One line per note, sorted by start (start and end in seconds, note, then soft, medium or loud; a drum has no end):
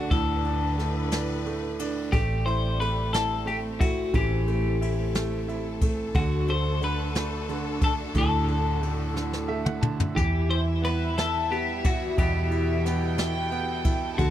0.00 2.09 D3 medium
0.00 2.15 D3 medium
0.00 0.78 A3 medium
0.00 0.45 D4 medium
0.00 2.09 D4 medium
0.00 0.12 F#4 medium
0.00 2.09 F#5 medium
0.10 2.09 D2 loud
0.10 2.08 A2 medium
0.10 1.75 A4 medium
0.10 2.10 B4 medium
0.10 kick loud
0.10 ride medium
0.44 1.10 D4 medium
0.44 ride soft
0.78 1.44 A3 medium
0.78 snare soft
0.78 ride soft
1.11 1.78 D4 medium
1.11 snare loud
1.11 ride medium
1.46 2.11 A3 medium
1.46 ride soft
1.79 2.12 D4 medium
1.79 ride medium
2.12 4.10 A1 loud
2.12 4.12 G3 medium
2.12 6.11 A3 medium
2.12 2.79 A3 medium
2.12 6.11 C4 medium
2.12 2.44 G4 medium
2.12 kick medium
2.12 ride medium
2.46 3.12 E4 medium
2.46 2.80 C5 medium
2.46 ride soft
2.80 3.44 A3 medium
2.80 3.13 B4 loud
2.80 ride medium
3.13 3.78 E4 medium
3.13 3.45 A4 medium
3.13 snare loud
3.13 ride medium
3.45 4.45 A3 medium
3.45 3.56 G4 medium
3.45 ride soft
3.79 4.80 E4 medium
3.79 4.15 F#4 medium
3.79 kick loud
3.79 ride medium
4.14 6.11 A1 loud
4.14 6.11 E3 medium
4.14 5.78 G4 medium
4.14 10.12 A4 medium
4.14 kick medium
4.14 ride medium
4.47 5.13 A3 medium
4.47 ride soft
4.81 5.47 E4 medium
4.81 ride medium
5.15 5.81 A3 medium
5.15 snare loud
5.15 ride medium
5.48 6.13 E4 medium
5.48 ride soft
5.81 6.14 A3 medium
5.81 kick loud
5.81 ride medium
6.15 8.11 D2 loud
6.15 6.79 D3 medium
6.15 10.13 D3 medium
6.15 10.13 D4 medium
6.15 10.12 F#4 medium
6.15 6.50 F#4 medium
6.15 kick loud
6.15 ride medium
6.47 7.14 A3 medium
6.47 6.83 C5 medium
6.47 ride soft
6.81 7.47 D3 medium
6.81 7.84 B4 loud
6.81 ride medium
7.15 7.80 A3 medium
7.15 snare loud
7.15 ride medium
7.49 8.46 D3 medium
7.49 ride soft
7.81 8.80 A3 medium
7.81 7.93 A4 medium
7.81 kick loud
7.81 ride medium
8.14 10.12 D2 loud
8.14 10.13 A2 medium
8.14 9.81 A4 medium
8.14 kick loud
8.14 ride medium
8.48 9.12 D3 medium
8.48 ride soft
8.81 9.47 A3 medium
8.81 ride soft
9.14 9.80 D3 soft
9.14 snare soft
9.33 snare medium
9.48 10.14 A3 medium
9.48 9.64 E5 medium
9.65 9.81 F#5 medium
9.65 mid tom medium
9.81 10.15 D3 medium
9.81 10.13 A5 medium
9.81 mid tom loud
10.00 floor tom medium
10.15 12.15 E2 loud
10.15 12.14 E3 medium
10.15 14.14 E3 medium
10.15 14.14 G3 medium
10.15 14.14 E4 medium
10.15 10.51 G4 medium
10.15 12.82 E5 medium
10.15 kick medium
10.15 splash medium
10.49 11.15 E4 medium
10.49 10.60 C5 loud
10.49 ride soft
10.82 11.49 B3 medium
10.82 11.16 B4 medium
10.82 ride medium
11.17 11.84 E4 medium
11.17 11.53 A4 medium
11.17 snare loud
11.17 ride medium
11.50 12.81 B3 medium
11.50 11.85 G4 medium
11.50 ride soft
11.84 12.49 E4 medium
11.84 12.18 F#4 medium
11.84 kick loud
11.84 ride medium
12.18 14.14 E2 loud
12.18 14.14 B2 medium
12.18 13.81 G4 medium
12.18 14.30 A4 medium
12.18 kick loud
12.18 ride medium
12.51 13.17 E4 medium
12.51 ride soft
12.85 13.50 B3 medium
12.85 14.18 G5 loud
12.85 snare soft
12.85 ride medium
13.18 13.83 E4 medium
13.18 snare loud
13.18 ride medium
13.51 14.16 B3 medium
13.51 ride soft
13.84 14.17 E4 medium
13.84 kick loud
13.84 ride medium
14.18 14.30 D2 loud
14.18 14.30 D3 medium
14.18 14.30 D4 medium
14.18 14.30 F#4 medium
14.18 14.30 F#5 medium
14.18 14.30 A5 loud
14.18 kick loud
14.18 ride medium